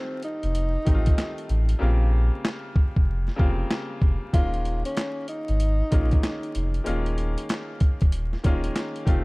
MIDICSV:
0, 0, Header, 1, 5, 480
1, 0, Start_track
1, 0, Tempo, 631579
1, 1376, Time_signature, 4, 2, 24, 8
1, 7025, End_track
2, 0, Start_track
2, 0, Title_t, "Tenor saxophone"
2, 0, Program_c, 0, 66
2, 0, Note_on_c, 0, 60, 80
2, 157, Note_off_c, 0, 60, 0
2, 184, Note_on_c, 0, 63, 98
2, 1349, Note_off_c, 0, 63, 0
2, 3297, Note_on_c, 0, 65, 105
2, 3664, Note_off_c, 0, 65, 0
2, 3689, Note_on_c, 0, 61, 85
2, 3997, Note_off_c, 0, 61, 0
2, 4018, Note_on_c, 0, 63, 91
2, 5187, Note_off_c, 0, 63, 0
2, 7025, End_track
3, 0, Start_track
3, 0, Title_t, "Upright piano"
3, 0, Program_c, 1, 0
3, 0, Control_c, 1, 64, 127
3, 0, Note_on_c, 1, 51, 83
3, 0, Note_on_c, 1, 55, 75
3, 0, Note_on_c, 1, 57, 65
3, 0, Note_on_c, 1, 60, 72
3, 0, Note_on_c, 1, 65, 86
3, 353, Note_off_c, 1, 51, 0
3, 356, Note_off_c, 1, 55, 0
3, 358, Note_off_c, 1, 57, 0
3, 361, Note_off_c, 1, 60, 0
3, 364, Note_off_c, 1, 65, 0
3, 645, Note_on_c, 1, 51, 77
3, 650, Note_on_c, 1, 55, 71
3, 656, Note_on_c, 1, 57, 74
3, 662, Note_on_c, 1, 60, 74
3, 668, Note_on_c, 1, 63, 77
3, 717, Note_on_c, 1, 65, 90
3, 724, Note_off_c, 1, 63, 0
3, 1327, Note_off_c, 1, 51, 0
3, 1330, Note_off_c, 1, 55, 0
3, 1333, Note_off_c, 1, 57, 0
3, 1336, Note_off_c, 1, 60, 0
3, 1359, Note_on_c, 1, 49, 95
3, 1364, Note_off_c, 1, 65, 0
3, 1364, Note_on_c, 1, 55, 82
3, 1371, Note_on_c, 1, 58, 86
3, 1376, Note_on_c, 1, 60, 81
3, 1381, Note_on_c, 1, 65, 92
3, 1386, Control_c, 1, 64, 0
3, 1526, Control_c, 1, 64, 127
3, 2270, Note_off_c, 1, 49, 0
3, 2273, Note_off_c, 1, 55, 0
3, 2276, Note_off_c, 1, 58, 0
3, 2279, Note_off_c, 1, 60, 0
3, 2281, Note_off_c, 1, 65, 0
3, 2556, Note_on_c, 1, 49, 97
3, 2562, Note_on_c, 1, 55, 93
3, 2567, Note_on_c, 1, 58, 90
3, 2573, Note_on_c, 1, 60, 87
3, 2578, Note_on_c, 1, 65, 101
3, 3243, Note_off_c, 1, 49, 0
3, 3246, Note_off_c, 1, 55, 0
3, 3249, Note_off_c, 1, 58, 0
3, 3252, Note_off_c, 1, 60, 0
3, 3254, Note_off_c, 1, 65, 0
3, 3289, Note_on_c, 1, 51, 78
3, 3294, Note_on_c, 1, 56, 70
3, 3300, Note_on_c, 1, 58, 73
3, 3305, Control_c, 1, 64, 0
3, 3307, Note_on_c, 1, 61, 67
3, 3311, Note_on_c, 1, 65, 81
3, 3444, Control_c, 1, 64, 127
3, 4195, Note_off_c, 1, 51, 0
3, 4198, Note_off_c, 1, 56, 0
3, 4201, Note_off_c, 1, 58, 0
3, 4204, Note_off_c, 1, 61, 0
3, 4206, Note_off_c, 1, 65, 0
3, 4489, Note_on_c, 1, 51, 80
3, 4495, Note_on_c, 1, 56, 71
3, 4500, Note_on_c, 1, 58, 79
3, 4506, Note_on_c, 1, 61, 74
3, 4512, Note_on_c, 1, 65, 85
3, 5169, Note_off_c, 1, 51, 0
3, 5172, Note_off_c, 1, 56, 0
3, 5175, Note_off_c, 1, 58, 0
3, 5178, Note_off_c, 1, 61, 0
3, 5181, Note_off_c, 1, 65, 0
3, 5198, Note_on_c, 1, 51, 87
3, 5203, Note_on_c, 1, 56, 86
3, 5209, Note_on_c, 1, 58, 84
3, 5214, Note_on_c, 1, 61, 85
3, 5220, Note_on_c, 1, 65, 101
3, 6109, Note_off_c, 1, 51, 0
3, 6112, Note_off_c, 1, 56, 0
3, 6115, Note_off_c, 1, 58, 0
3, 6118, Note_off_c, 1, 61, 0
3, 6121, Note_off_c, 1, 65, 0
3, 6411, Note_on_c, 1, 51, 99
3, 6416, Note_on_c, 1, 56, 85
3, 6422, Note_on_c, 1, 58, 85
3, 6428, Note_on_c, 1, 61, 91
3, 6433, Note_on_c, 1, 65, 114
3, 6870, Note_off_c, 1, 51, 0
3, 6881, Note_on_c, 1, 51, 94
3, 6888, Note_on_c, 1, 55, 87
3, 6893, Note_off_c, 1, 65, 0
3, 6894, Note_on_c, 1, 57, 91
3, 6896, Note_off_c, 1, 56, 0
3, 6898, Note_on_c, 1, 60, 88
3, 6899, Note_off_c, 1, 58, 0
3, 6902, Note_off_c, 1, 61, 0
3, 6904, Control_c, 1, 64, 0
3, 6904, Note_on_c, 1, 65, 101
3, 7025, Note_off_c, 1, 51, 0
3, 7025, Note_off_c, 1, 55, 0
3, 7025, Note_off_c, 1, 57, 0
3, 7025, Note_off_c, 1, 60, 0
3, 7025, Note_off_c, 1, 65, 0
3, 7025, End_track
4, 0, Start_track
4, 0, Title_t, "Sub bass"
4, 0, Program_c, 2, 38
4, 330, Note_on_c, 2, 29, 93
4, 582, Note_off_c, 2, 29, 0
4, 663, Note_on_c, 2, 33, 107
4, 845, Note_off_c, 2, 33, 0
4, 1139, Note_on_c, 2, 33, 96
4, 1322, Note_off_c, 2, 33, 0
4, 1380, Note_on_c, 2, 34, 116
4, 1748, Note_off_c, 2, 34, 0
4, 2255, Note_on_c, 2, 29, 89
4, 2505, Note_off_c, 2, 29, 0
4, 2582, Note_on_c, 2, 29, 96
4, 2764, Note_off_c, 2, 29, 0
4, 3055, Note_on_c, 2, 29, 97
4, 3172, Note_off_c, 2, 29, 0
4, 3296, Note_on_c, 2, 27, 109
4, 3666, Note_off_c, 2, 27, 0
4, 4173, Note_on_c, 2, 32, 88
4, 4424, Note_off_c, 2, 32, 0
4, 4504, Note_on_c, 2, 34, 92
4, 4685, Note_off_c, 2, 34, 0
4, 4982, Note_on_c, 2, 29, 94
4, 5165, Note_off_c, 2, 29, 0
4, 5223, Note_on_c, 2, 27, 106
4, 5590, Note_off_c, 2, 27, 0
4, 6096, Note_on_c, 2, 27, 91
4, 6346, Note_off_c, 2, 27, 0
4, 6423, Note_on_c, 2, 27, 97
4, 6605, Note_off_c, 2, 27, 0
4, 6894, Note_on_c, 2, 29, 102
4, 7025, Note_off_c, 2, 29, 0
4, 7025, End_track
5, 0, Start_track
5, 0, Title_t, "Drums"
5, 171, Note_on_c, 9, 42, 75
5, 247, Note_off_c, 9, 42, 0
5, 327, Note_on_c, 9, 42, 56
5, 403, Note_off_c, 9, 42, 0
5, 416, Note_on_c, 9, 42, 101
5, 492, Note_off_c, 9, 42, 0
5, 657, Note_on_c, 9, 42, 85
5, 660, Note_on_c, 9, 36, 97
5, 733, Note_off_c, 9, 42, 0
5, 736, Note_off_c, 9, 36, 0
5, 806, Note_on_c, 9, 42, 62
5, 815, Note_on_c, 9, 36, 97
5, 882, Note_off_c, 9, 42, 0
5, 891, Note_off_c, 9, 36, 0
5, 897, Note_on_c, 9, 42, 107
5, 898, Note_on_c, 9, 38, 110
5, 901, Note_on_c, 9, 39, 86
5, 973, Note_off_c, 9, 42, 0
5, 974, Note_off_c, 9, 38, 0
5, 977, Note_off_c, 9, 39, 0
5, 1050, Note_on_c, 9, 42, 38
5, 1126, Note_off_c, 9, 42, 0
5, 1136, Note_on_c, 9, 42, 78
5, 1212, Note_off_c, 9, 42, 0
5, 1284, Note_on_c, 9, 42, 53
5, 1360, Note_off_c, 9, 42, 0
5, 1859, Note_on_c, 9, 38, 126
5, 1862, Note_on_c, 9, 39, 97
5, 1935, Note_off_c, 9, 38, 0
5, 1938, Note_off_c, 9, 39, 0
5, 2095, Note_on_c, 9, 36, 106
5, 2171, Note_off_c, 9, 36, 0
5, 2253, Note_on_c, 9, 36, 102
5, 2329, Note_off_c, 9, 36, 0
5, 2492, Note_on_c, 9, 38, 36
5, 2568, Note_off_c, 9, 38, 0
5, 2580, Note_on_c, 9, 36, 97
5, 2656, Note_off_c, 9, 36, 0
5, 2817, Note_on_c, 9, 38, 108
5, 2820, Note_on_c, 9, 39, 85
5, 2893, Note_off_c, 9, 38, 0
5, 2896, Note_off_c, 9, 39, 0
5, 3052, Note_on_c, 9, 36, 103
5, 3128, Note_off_c, 9, 36, 0
5, 3295, Note_on_c, 9, 36, 115
5, 3296, Note_on_c, 9, 42, 105
5, 3371, Note_off_c, 9, 36, 0
5, 3372, Note_off_c, 9, 42, 0
5, 3448, Note_on_c, 9, 42, 37
5, 3524, Note_off_c, 9, 42, 0
5, 3536, Note_on_c, 9, 42, 69
5, 3612, Note_off_c, 9, 42, 0
5, 3688, Note_on_c, 9, 42, 63
5, 3764, Note_off_c, 9, 42, 0
5, 3775, Note_on_c, 9, 42, 101
5, 3780, Note_on_c, 9, 38, 121
5, 3783, Note_on_c, 9, 39, 98
5, 3851, Note_off_c, 9, 42, 0
5, 3856, Note_off_c, 9, 38, 0
5, 3859, Note_off_c, 9, 39, 0
5, 4012, Note_on_c, 9, 42, 73
5, 4088, Note_off_c, 9, 42, 0
5, 4167, Note_on_c, 9, 42, 55
5, 4243, Note_off_c, 9, 42, 0
5, 4255, Note_on_c, 9, 42, 97
5, 4331, Note_off_c, 9, 42, 0
5, 4497, Note_on_c, 9, 42, 85
5, 4501, Note_on_c, 9, 36, 103
5, 4573, Note_off_c, 9, 42, 0
5, 4577, Note_off_c, 9, 36, 0
5, 4646, Note_on_c, 9, 42, 62
5, 4656, Note_on_c, 9, 36, 97
5, 4722, Note_off_c, 9, 42, 0
5, 4732, Note_off_c, 9, 36, 0
5, 4737, Note_on_c, 9, 42, 106
5, 4738, Note_on_c, 9, 38, 107
5, 4741, Note_on_c, 9, 39, 84
5, 4813, Note_off_c, 9, 42, 0
5, 4814, Note_off_c, 9, 38, 0
5, 4817, Note_off_c, 9, 39, 0
5, 4889, Note_on_c, 9, 42, 37
5, 4965, Note_off_c, 9, 42, 0
5, 4977, Note_on_c, 9, 42, 79
5, 5053, Note_off_c, 9, 42, 0
5, 5124, Note_on_c, 9, 42, 54
5, 5200, Note_off_c, 9, 42, 0
5, 5215, Note_on_c, 9, 42, 102
5, 5291, Note_off_c, 9, 42, 0
5, 5368, Note_on_c, 9, 42, 36
5, 5444, Note_off_c, 9, 42, 0
5, 5456, Note_on_c, 9, 42, 68
5, 5532, Note_off_c, 9, 42, 0
5, 5607, Note_on_c, 9, 42, 63
5, 5683, Note_off_c, 9, 42, 0
5, 5695, Note_on_c, 9, 42, 99
5, 5700, Note_on_c, 9, 38, 123
5, 5703, Note_on_c, 9, 39, 100
5, 5771, Note_off_c, 9, 42, 0
5, 5776, Note_off_c, 9, 38, 0
5, 5779, Note_off_c, 9, 39, 0
5, 5930, Note_on_c, 9, 42, 72
5, 5935, Note_on_c, 9, 36, 104
5, 6006, Note_off_c, 9, 42, 0
5, 6011, Note_off_c, 9, 36, 0
5, 6085, Note_on_c, 9, 42, 56
5, 6093, Note_on_c, 9, 36, 102
5, 6161, Note_off_c, 9, 42, 0
5, 6169, Note_off_c, 9, 36, 0
5, 6173, Note_on_c, 9, 42, 97
5, 6249, Note_off_c, 9, 42, 0
5, 6331, Note_on_c, 9, 38, 38
5, 6407, Note_off_c, 9, 38, 0
5, 6416, Note_on_c, 9, 42, 89
5, 6420, Note_on_c, 9, 36, 101
5, 6492, Note_off_c, 9, 42, 0
5, 6496, Note_off_c, 9, 36, 0
5, 6565, Note_on_c, 9, 42, 59
5, 6641, Note_off_c, 9, 42, 0
5, 6655, Note_on_c, 9, 42, 107
5, 6656, Note_on_c, 9, 38, 108
5, 6659, Note_on_c, 9, 39, 85
5, 6731, Note_off_c, 9, 42, 0
5, 6732, Note_off_c, 9, 38, 0
5, 6735, Note_off_c, 9, 39, 0
5, 6808, Note_on_c, 9, 42, 36
5, 6884, Note_off_c, 9, 42, 0
5, 6892, Note_on_c, 9, 36, 104
5, 6897, Note_on_c, 9, 42, 81
5, 6968, Note_off_c, 9, 36, 0
5, 6973, Note_off_c, 9, 42, 0
5, 7025, End_track
0, 0, End_of_file